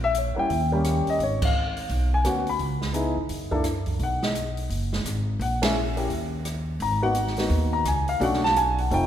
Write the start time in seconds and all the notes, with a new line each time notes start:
Already playing: A#1
0.04 E5
0.15 C#5, closed hi-hat
0.35 G3 A#3 C#4 E4 F#5, muted upright bass stroke
0.39 G5
0.50 D#2, open hi-hat
0.72 G3 A#3 C#4 G4
0.84 cross-stick, closed hi-hat
1.07 D#5, open hi-hat
1.19 G#1, open hi-hat
1.23 C#5
1.42 F5, kick, crash
1.77 open hi-hat
1.89 B1, open hi-hat
2.14 G#5
2.24 D2 A#3 B3 C#4 F#4 F#5, cross-stick, closed hi-hat
2.47 B5, open hi-hat
2.59 C#2, open hi-hat
2.81 snare
2.93 B3 D#4 E4 G#4, closed hi-hat
3.16 E2
3.29 F#2, open hi-hat
3.51 A#3 D4 E4 A4, kick
3.64 cross-stick, closed hi-hat
3.86 kick, open hi-hat
3.99 B1, open hi-hat
4.03 F#5
4.22 D#5, snare
4.35 closed hi-hat
4.57 open hi-hat
4.70 F#1, open hi-hat
4.93 snare
5.04 G#1, cross-stick, closed hi-hat
5.39 A#1 F#5, open hi-hat
5.62 A#3 C#4 E4 G#4 E5, snare, ride
5.97 A#3 C#4 E4 G4, open hi-hat
6.09 D#2, open hi-hat
6.45 cross-stick, closed hi-hat
6.80 G#1 A#5, open hi-hat
7.02 A#3 B3 D#4 F#4 F#5
7.15 closed hi-hat
7.27 snare
7.37 A#3 B3 D#4 F#4, snare, open hi-hat
7.50 D#2, open hi-hat
7.73 A#5
7.84 C#2 G#5, cross-stick, closed hi-hat
8.08 F5, open hi-hat
8.20 B1 A3 C#4 D4 F#4 F#5, open hi-hat
8.33 snare
8.44 A5, snare
8.56 G#5, closed hi-hat
8.78 F#5, open hi-hat
8.91 F1 A3 C4 D#4 F4 G5, open hi-hat